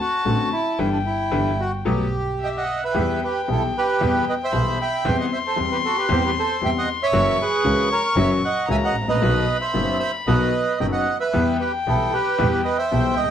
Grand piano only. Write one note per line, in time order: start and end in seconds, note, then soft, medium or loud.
0.25 0.48 A1 soft
0.25 0.48 A2 soft
0.25 0.48 D3 soft
0.25 0.48 A3 soft
0.25 0.48 C4 soft
0.25 0.48 F#4 soft
0.79 0.96 D3 medium
0.79 0.96 E3 medium
0.79 0.96 G3 medium
1.32 1.49 D3 medium
1.32 1.49 E3 medium
1.32 1.49 G3 medium
1.85 2.03 F#3 medium
1.85 2.03 A3 medium
1.85 2.03 B3 medium
2.94 3.18 E2 medium
2.94 3.18 E3 medium
2.94 3.17 G3 medium
2.94 3.17 B3 medium
2.94 3.18 G4 medium
3.48 3.70 B1 soft
3.48 3.70 B2 soft
3.48 3.70 E3 soft
3.48 3.71 G3 soft
3.48 3.71 B3 soft
3.48 3.71 G4 soft
4.01 4.23 E2 medium
4.01 4.23 E3 medium
4.01 4.23 G3 medium
4.01 4.23 B3 medium
4.01 4.23 G4 medium
4.52 4.75 B1 medium
4.52 4.75 B2 soft
4.52 4.75 E3 soft
4.52 4.75 G3 soft
4.52 4.75 B3 soft
4.52 4.75 G4 soft
5.05 5.27 E2 medium
5.05 5.27 E3 medium
5.05 5.27 G3 medium
5.05 5.27 C4 medium
5.05 5.27 G4 medium
5.56 5.79 E2 soft
5.56 5.79 E3 soft
5.56 5.79 G3 soft
5.56 5.79 C4 soft
5.56 5.79 G4 soft
6.09 6.32 E2 medium
6.09 6.32 E3 medium
6.09 6.31 G3 medium
6.09 6.32 C4 medium
6.09 6.32 G4 medium
6.61 6.84 E2 medium
6.61 6.84 E3 soft
6.61 6.84 G3 soft
6.61 6.84 C4 soft
6.61 6.84 G4 soft
7.13 7.35 F#2 medium
7.13 7.35 E3 medium
7.13 7.35 F#3 medium
7.13 7.35 A#3 medium
7.13 7.35 C#4 medium
7.13 7.35 F#4 medium
7.64 7.87 C#2 soft
7.64 7.87 C#3 medium
7.64 7.87 E3 soft
7.64 7.87 A#3 soft
7.64 7.87 C#4 soft
7.64 7.87 F#4 soft
8.16 8.39 F#2 medium
8.16 8.39 E3 medium
8.16 8.39 F#3 medium
8.16 8.39 A#3 medium
8.16 8.39 C#4 medium
8.16 8.39 F#4 medium
8.68 8.91 C#2 medium
8.68 8.91 C#3 soft
8.68 8.91 E3 soft
8.68 8.91 A#3 soft
8.68 8.91 C#4 soft
8.68 8.91 F#4 medium
9.01 9.08 G#1 soft
9.08 9.15 A1 medium
9.15 9.21 A#1 medium
9.22 9.44 B1 medium
9.22 9.44 B2 medium
9.22 9.44 D#3 medium
9.22 9.44 F#3 medium
9.22 9.44 B3 medium
9.22 9.44 F#4 medium
9.74 9.96 F#1 soft
9.74 9.96 F#2 soft
9.74 9.96 D#3 soft
9.74 9.96 F#3 soft
9.74 9.96 B3 soft
9.74 9.96 F#4 soft
10.27 10.49 B1 medium
10.27 10.49 B2 medium
10.27 10.49 D#3 medium
10.27 10.50 F#3 medium
10.27 10.49 B3 medium
10.27 10.50 F#4 medium
10.80 11.02 F#1 medium
10.80 11.02 F#2 soft
10.80 11.02 D#3 soft
10.80 11.02 F#3 soft
10.80 11.02 B3 soft
10.80 11.03 F#4 soft
11.33 11.56 E2 medium
11.33 11.56 E3 medium
11.33 11.56 G3 medium
11.33 11.56 B3 medium
11.33 11.56 G4 medium
11.87 12.09 B1 soft
11.87 12.09 B2 soft
11.87 12.09 E3 soft
11.87 12.09 G3 soft
11.87 12.09 B3 soft
11.87 12.09 G4 soft
12.38 12.61 E2 medium
12.38 12.61 E3 medium
12.38 12.61 G3 medium
12.38 12.61 B3 medium
12.38 12.61 G4 medium
12.91 13.13 B1 medium
12.91 13.13 B2 medium
12.91 13.13 E3 soft
12.91 13.13 G3 soft
12.91 13.13 B3 soft
12.91 13.13 G4 soft
13.24 13.30 C2 soft